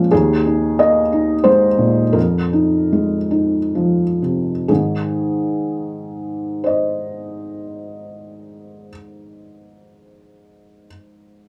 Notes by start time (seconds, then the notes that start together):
Already playing: A#2 F3 G#3 A#3 C#4 A#4
0.11 D#2 G#4
0.46 D#4
0.79 A#3 D#5
1.13 D#4
1.44 G#3 C5
1.78 A#2
2.13 F2 A#4
2.53 D#4
2.93 G#3
3.31 D#4
3.75 F3
4.22 C3
4.68 G#2 D#3 G#4
6.64 C5 D#5